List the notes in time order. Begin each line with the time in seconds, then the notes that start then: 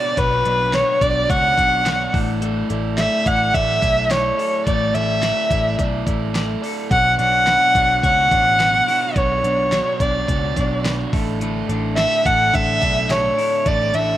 Already playing: B2 B3 D4 F#4 C#5 D5
0.17 B1 B2 F#3 B3 D4 F#4 B4 C#5, kick, closed hi-hat
0.45 B1 B3 D4 F#4 C#5, closed hi-hat
0.73 B2 F#3 B3 D4 F#4 B4 C#5, snare, closed hi-hat
0.87 C#5
1.01 B1 B3 D4 F#4 C#5 D5, kick, closed hi-hat
1.29 C#2 B3 D4 F#4 C#5 F#5, kick, closed hi-hat
1.57 B1 B3 D4 F#4 C#5, kick, closed hi-hat
1.85 B2 F#3 B3 D4 F#4 C#5, snare, closed hi-hat
2.13 A1 A3 E4 A4 D5, kick, open hi-hat
2.41 A3 E4 A4 D5, closed hi-hat
2.69 A1 E4 A4 D5, closed hi-hat
2.98 A3 E4 A4 D5 E5, snare, closed hi-hat
3.25 A1 E4 A4 D5 F#5, kick, closed hi-hat
3.53 A1 A3 E4 A4 D5 E5, kick, closed hi-hat
3.82 B1 E4 A4 D5, kick, closed hi-hat
4.09 A3 E4 A4 C#5 D5, snare, closed hi-hat
4.38 E4 A4 D5, open hi-hat
4.66 A1 A3 E4 A4 D5, kick, closed hi-hat
4.94 A1 E4 A4 D5 E5, closed hi-hat
5.22 A3 E4 A4 D5, snare, closed hi-hat
5.50 A1 E4 A4 D5, kick, closed hi-hat
5.78 B1 A3 E4 A4 D5, kick, closed hi-hat
6.06 A1 E4 A4 D5, kick, closed hi-hat
6.34 A3 E4 A4 D5, snare, closed hi-hat
6.62 E4 A4 D5, open hi-hat
6.90 B1 B2 F#3 B3 D4 F#4 C#5 F#5, kick, closed hi-hat
7.18 B1 B3 D4 F#4 C#5 F#5, closed hi-hat
7.46 B2 F#3 B3 D4 F#4 B4 C#5, snare, closed hi-hat
7.62 C#5
7.74 B1 B3 D4 F#4 C#5, kick, closed hi-hat
8.02 C#2 B3 D4 F#4 C#5 F#5, kick, closed hi-hat
8.30 A1 B3 D4 F#4 C#5, kick, closed hi-hat
8.59 B2 F#3 B3 D4 F#4 B4 C#5, snare, closed hi-hat
8.74 C#5
8.87 B3 D4 E4 F#4 C#5, open hi-hat
9.02 F#4
9.15 B1 B2 F#3 B3 D4 F#4 C#5, kick, closed hi-hat
9.43 B1 B3 D4 F#4 C#5, closed hi-hat
9.72 B2 F#3 B3 D4 F#4 C#5, snare, closed hi-hat
10.00 B1 B3 D4 F#4 C#5 D5, kick, closed hi-hat
10.28 C#2 B3 D4 F#4 C#5, kick, closed hi-hat
10.56 B1 B3 D4 F#4 C#5, kick, closed hi-hat
10.84 B2 F#3 B3 D4 F#4 B4 C#5, snare, closed hi-hat
10.99 C#5
11.12 A1 A2 D4 E4 A4, kick, open hi-hat
11.40 A2 D3 D4 E4 A4, closed hi-hat
11.68 A1 D4 E4 A4, closed hi-hat
11.96 A2 D3 D4 E4 A4 E5, snare, closed hi-hat
12.25 A1 D4 E4 A4 F#5, kick, closed hi-hat
12.53 A1 D3 D4 E4 A4 E5, kick, closed hi-hat
12.81 B1 D4 E4 A4, kick, closed hi-hat
13.09 A2 D3 D4 E4 G4 A4 C#5, snare, closed hi-hat
13.24 A4
13.37 D4 E4 A4, open hi-hat
13.65 A1 A2 D3 D4 E4 A4 D5, kick, closed hi-hat
13.93 A1 D4 E4 A4 E5, closed hi-hat